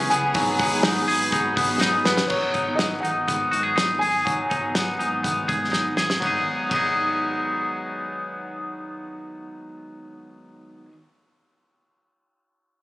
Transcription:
Already playing: string machine C#3 B3 E4, clean electric guitar E3 B3 C#4 G#4, transistor combo organ C#4 E4 G#4 B4, steel-string acoustic guitar B4
0.00 steel-string acoustic guitar B3 E4
0.10 picked electric bass C#2, clean electric guitar B3, violin section G#4, upright piano G#5, hi-hat pedal, open hi-hat
0.33 picked electric bass G#1, steel-string acoustic guitar F#3 B3 D#4 G#4, clean electric guitar F#3, string machine G#3 F#4 B4, transistor combo organ D#4 F#4 G#4 B4, kick, hi-hat pedal, open hi-hat
0.59 clean electric guitar B3, kick, hi-hat pedal, open hi-hat
0.71 steel-string acoustic guitar F#3 B3 D#4 G#4
0.83 picked electric bass G#1, clean electric guitar D#4, snare, hi-hat pedal, open hi-hat
0.95 steel-string acoustic guitar F#3 B3 D#4 G#4
1.07 picked electric bass G#1, clean electric guitar G#4, hi-hat pedal, open hi-hat
1.31 picked electric bass G#1, steel-string acoustic guitar F#3 B3 D#4 G#4, clean electric guitar D#4, kick, hi-hat pedal, open hi-hat
1.56 picked electric bass G#1, clean electric guitar B3, kick, hi-hat pedal, open hi-hat
1.67 steel-string acoustic guitar F#3 B3 D#4 G#4
1.81 picked electric bass G#1, clean electric guitar D#4, snare
1.92 steel-string acoustic guitar F#3 B3 D#4 G#4
2.04 picked electric bass G#1, clean electric guitar B3, upright piano B4, snare
2.17 snare
2.27 picked electric bass G#1, clean electric guitar F#3, steel-string acoustic guitar F#3 B3 D#4, upright piano C#5, kick, crash
2.32 steel-string acoustic guitar G#4
2.54 picked electric bass G#1, clean electric guitar D#4, kick, closed hi-hat
2.66 steel-string acoustic guitar F#3 B3 D#4 G#4
2.75 clean electric guitar B3, upright piano D#5, snare, closed hi-hat
2.80 picked electric bass G#1
3.00 steel-string acoustic guitar G#2 D#3, clean electric guitar D#4, upright piano F#5
3.04 picked electric bass G#1, steel-string acoustic guitar F#3 B3 D#4 G#4, closed hi-hat
3.28 picked electric bass G#1, steel-string acoustic guitar G#2 D#3 F#3 B3 D#4 G#4, clean electric guitar B3, kick, closed hi-hat
3.51 steel-string acoustic guitar G#2 D#3 F#3 B3 D#4 G#4, picked electric bass G#2, clean electric guitar F#4, closed hi-hat
3.63 clean electric guitar G#4
3.76 picked electric bass G#1, clean electric guitar D#4, snare, closed hi-hat
3.99 picked electric bass G#1, steel-string acoustic guitar F#3 B3, clean electric guitar G#4, upright piano G#5, open hi-hat
4.03 steel-string acoustic guitar D#4
4.24 picked electric bass G#1, steel-string acoustic guitar F#3 B3 D#4 G#4, clean electric guitar F#3, kick, closed hi-hat
4.50 picked electric bass G#1, clean electric guitar D#4, kick, closed hi-hat
4.63 steel-string acoustic guitar F#3 B3 D#4 G#4
4.75 picked electric bass G#1, clean electric guitar B3, snare, closed hi-hat
4.99 picked electric bass G#1, steel-string acoustic guitar G#2 D#3 F#3 B3 D#4 G#4, clean electric guitar D#4, closed hi-hat
5.23 picked electric bass G#1, steel-string acoustic guitar G#2 D#3 F#3 B3 D#4 G#4, clean electric guitar B3, kick, closed hi-hat
5.48 steel-string acoustic guitar G#2 D#3 F#3 B3 D#4 G#4, picked electric bass G#2, clean electric guitar G#4, kick, closed hi-hat
5.71 picked electric bass G#1, clean electric guitar D#4, snare
5.97 picked electric bass G#1, steel-string acoustic guitar F#3 B3 D#4 G#4, clean electric guitar G#4, snare
6.10 snare
6.20 picked electric bass G#1, steel-string acoustic guitar G#2 D#3, clean electric guitar F#3 B3, kick, ride
6.25 steel-string acoustic guitar F#3 B3, clean electric guitar D#4 G#4
6.30 steel-string acoustic guitar D#4 G#4
6.68 picked electric bass G#1, steel-string acoustic guitar G#2 D#3, clean electric guitar F#3, kick, ride
6.72 steel-string acoustic guitar F#3, clean electric guitar B3 D#4 G#4
6.76 steel-string acoustic guitar B3 D#4
6.81 steel-string acoustic guitar G#4

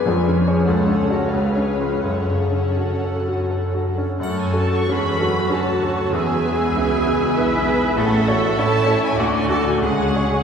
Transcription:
Already playing: violin section G#5
0.04 grand piano F2, cello section F2, viola section C#4 G#4, clarinet F4, violin section C#5
0.27 grand piano C#4
0.47 grand piano G#4 C#5
0.67 grand piano C#2, cello section C#2, viola section A4, clarinet A4, violin section F#5
0.88 grand piano C#4
1.10 grand piano F#4 C#5
1.30 grand piano C#2, clarinet G#4, viola section B4, violin section F5
1.56 grand piano C#4
1.80 grand piano F4 B4
2.03 grand piano F#2, cello section F#2, clarinet G#4, viola section A4, violin section F#5
2.29 grand piano C#3
2.52 grand piano C#4
2.77 grand piano F#4, clarinet F#4
3.04 grand piano A4
3.28 grand piano F#4
3.50 grand piano A4
3.74 grand piano F#4
3.98 grand piano C#4
4.20 grand piano F#2, double bass section F#2, french horn section F#3 C#4, viola section A3 F#4, cor anglais F#4, cello section A4, violin section A4 C#5 F#5, flute section C#6, triangle
4.24 clarinet C#4
4.41 violin section G#5
4.53 grand piano F#4 A4
4.57 violin section A5
4.74 violin section C#6
4.88 double bass section E2, viola section G#3, grand piano C#4 F#4 A4, cello section G#4, violin section B4 C#5 B5
5.19 viola section F#3, grand piano F#4 A4
5.49 double bass section D2, grand piano C#4 F#4 A4, cello section F#4, viola section F#4, violin section C#5 A5
5.82 grand piano F#4 A4, violin section C#5
6.11 double bass section E2, grand piano E2, viola section G#3, french horn section B3, cello section G#4, cor anglais G#4, violin section B4 E5 G#5, flute section E6
6.15 french horn section G#3, clarinet B3
6.43 cello section G#4, grand piano G#4 B4
6.74 double bass section C#2, viola section C#4, violin section E4 E5, grand piano E4 G#4 B4
7.06 viola section B3, grand piano G#4 B4
7.36 double bass section B1, viola section E4, grand piano E4 G#4 B4, violin section G#4 E5, cello section B4
7.68 grand piano G#4 B4
7.96 double bass section A1, grand piano A2, viola section A3 C#4, clarinet A3, cello section A4, cor anglais A4, violin section A4 E5 F#5, flute section C#6
8.00 french horn section A3 C#4
8.27 viola section F#4, grand piano A4 C#5
8.58 double bass section A2, clarinet A3, grand piano E4 A4 C#5, cello section E4, viola section E4, cor anglais A4, violin section C#5 E5 A5, flute section C#6
8.86 grand piano A4 C#5
9.03 violin section G#5
9.16 double bass section D2, grand piano D2, french horn section D4, cello section F#4, cor anglais A4, violin section D5 F#5, flute section D6
9.20 viola section A3 F#4, clarinet A3
9.34 violin section G#5
9.49 grand piano F#4 A4, violin section A5
9.67 violin section G#5
9.80 double bass section C#2, grand piano C#2, french horn section G#3 C#4, violin section G#4 C#5 F#5, cello section G#4, cor anglais G#4, flute section C#6
9.84 viola section C#4 G#4, clarinet C#4
10.14 grand piano G#4 C#5

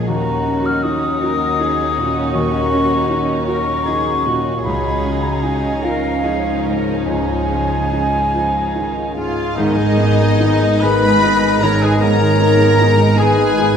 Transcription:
Already playing: harp A#2 F3 A#3 F4 G#4, grand piano F3 F4 G#4
0.06 double bass section D#2, grand piano D#2, harp D#3, french horn section F#3 C#4, viola section C#4, violin section D#4 F#4, cello section F#4, flute A#5
0.46 harp A#3, grand piano C#4
0.66 flute F6
0.83 grand piano D#4, flute D#6
1.21 harp F#4, grand piano F#4, cello section A#4
1.59 grand piano D#4, harp D#4, cello section G#4
1.96 grand piano A#2, harp C#4, cello section F#4
2.33 grand piano D#2, harp D#3, flute C#6
2.71 harp A#3, grand piano C#4
3.09 grand piano D#4
3.46 harp F#4, grand piano F#4, cello section A#4, flute C#6
3.84 harp D#4, grand piano D#4, cello section G#4
4.24 grand piano A#2, harp C#4, cello section F#4
4.63 double bass section C#2, grand piano C#2, harp C#3, viola section C#4, french horn section D#4, violin section D#4 F4, cello section G#4, flute B5
5.04 harp G#3, grand piano C#4
5.23 flute A#5
5.43 harp D#4, grand piano D#4, flute G#5
5.82 french horn section F3, harp F4, grand piano F4, cello section A#4, flute F5
6.23 harp D#4, grand piano D#4, cello section G#4
6.63 grand piano G#2, harp C#4, cello section A#4
7.06 grand piano C#2, harp C#3, cello section G#4, flute G#5
7.49 harp G#3, grand piano C#4
7.91 harp D#4, grand piano D#4
8.32 french horn section F3, harp F4, grand piano F4
8.75 french horn section D#3, grand piano D#4, harp D#4
9.15 grand piano G#2, french horn section G#3, harp C#4, oboe F4, clarinet F4, violin section F4 F5, flute G#4
9.56 double bass section G#1, cello section G#2, grand piano G#2, harp G#2, viola section D#3 B3, french horn section G#3 D#4, oboe D#4, clarinet D#4, violin section D#4 D#5, flute G#4
9.76 harp D#3, viola section G#3 D#4
9.98 viola section D#3 B3, harp B3, grand piano B3
10.19 viola section G#3 D#4, harp D#4
10.40 viola section D#3 B3, grand piano D#4, harp G#4
10.61 viola section G#3 D#4
10.81 double bass section G#1, cello section G#2, viola section D#3 B3, grand piano G#4, oboe B4, violin section B4 B5, clarinet B4, flute D#5, harp D#5
11.01 viola section G#3 D#4, harp G#5
11.22 viola section D#3 B3, grand piano D#4, harp D#5
11.41 viola section G#3 D#4
11.61 viola section D#3 B3, grand piano D#3, harp G#4, oboe A#4, clarinet A#4, violin section A#4 A#5, flute C#5
11.81 viola section G#3 D#4, harp D#4, clarinet G#4, oboe G#4, violin section G#4 G#5, flute B4
11.99 double bass section G#1, cello section G#2, grand piano G#2, harp G#2, viola section D#3 B3, clarinet A#4, oboe A#4, violin section A#4 A#5, flute C#5
12.19 harp D#3, viola section G#3 D#4
12.40 viola section D#3 B3, grand piano B3, harp B3
12.59 viola section G#3 D#4, harp D#4
12.78 viola section D#3 B3, grand piano D#4, harp G#4
12.98 viola section G#3 D#4
13.18 double bass section G#1, cello section G#2, viola section D#3 B3, violin section G#4 G#5, clarinet G#4, oboe G#4, grand piano G#4, flute B4, harp D#5
13.37 viola section G#3 D#4, harp G#5
13.57 viola section D#3 B3, grand piano D#4

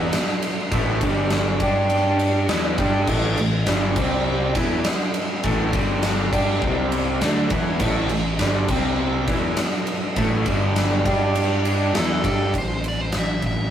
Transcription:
Already playing: picked electric bass E2, overdriven electric guitar E3 B3 E4, tonewheel organ A4 E5 C6
0.13 snare, ride
0.29 snare
0.42 ride
0.71 picked electric bass A1, overdriven electric guitar A2 E3 A3, kick, ride
1.01 picked electric bass G1, overdriven electric guitar G2 D3 G3, tonewheel organ G4 D5 D6, kick, ride
1.30 snare, ride
1.59 picked electric bass G2, overdriven electric guitar G3 D4 G4, kick, ride
1.90 ride
2.19 ride
2.49 picked electric bass E2, overdriven electric guitar E3 B3 E4, tonewheel organ A4 E5 C6, snare, ride
2.78 picked electric bass G2, overdriven electric guitar G3 D4 G4, kick, ride
3.07 picked electric bass A1, overdriven electric guitar A2 E3 A3, kick, crash
3.37 picked electric bass A1, overdriven electric guitar A2 E3, ride
3.66 picked electric bass G1, overdriven electric guitar G2 D3 G3, snare, ride
3.96 picked electric bass C2, overdriven electric guitar C3 G3 C4, tonewheel organ G4 C5, kick, crash
4.55 picked electric bass E2, overdriven electric guitar E3 B3 E4, tonewheel organ A4 E5, kick, ride
4.84 snare, ride
5.00 snare
5.14 ride
5.43 picked electric bass A1, overdriven electric guitar A2 E3 A3, kick, ride
5.73 picked electric bass G1, overdriven electric guitar G2 D3 G3, tonewheel organ G4 D5 D6, kick, ride
6.03 snare, ride
6.32 picked electric bass G2, overdriven electric guitar G3 D4 G4, tonewheel organ A4 E5 C6, kick, crash
6.61 picked electric bass C2, overdriven electric guitar C3 G3 C4, tonewheel organ G4 C5, kick
6.92 ride
7.21 picked electric bass D2, overdriven electric guitar D3 A3 D4, tonewheel organ A4 E5, snare, ride
7.50 picked electric bass E2, overdriven electric guitar E3 B3 E4, kick, ride
7.80 picked electric bass A1, overdriven electric guitar A2 E3 A3, kick, crash
8.09 picked electric bass A1, overdriven electric guitar A2 E3, ride
8.39 picked electric bass G1, overdriven electric guitar G2 D3 G3, snare, ride
8.68 picked electric bass C2, overdriven electric guitar C3 G3 C4, tonewheel organ G4 C5, kick, crash
9.27 picked electric bass E2, overdriven electric guitar E3 B3 E4, tonewheel organ A4 E5 C6, kick, ride
9.57 snare, ride
9.73 snare
9.87 ride
10.16 picked electric bass A1, overdriven electric guitar A2 E3 A3, kick, ride
10.46 picked electric bass G1, overdriven electric guitar G2 D3 G3, tonewheel organ G4 D5 D6, kick, ride
10.76 snare, ride
11.05 picked electric bass G2, overdriven electric guitar G3 D4 G4, kick, ride
11.35 ride
11.65 ride
11.93 picked electric bass E2, overdriven electric guitar E3 B3 E4, tonewheel organ A4 E5 C6, snare, ride
11.98 lead electric guitar A4
12.23 picked electric bass G2, overdriven electric guitar G3 D4 G4, lead electric guitar A4, kick, ride
12.54 picked electric bass A1, kick, ride
12.58 lead electric guitar C5
12.84 ride
12.88 lead electric guitar D5
13.01 lead electric guitar C5
13.11 picked electric bass A1, snare, ride
13.17 lead electric guitar E5
13.42 picked electric bass A1, lead electric guitar E5, kick, ride

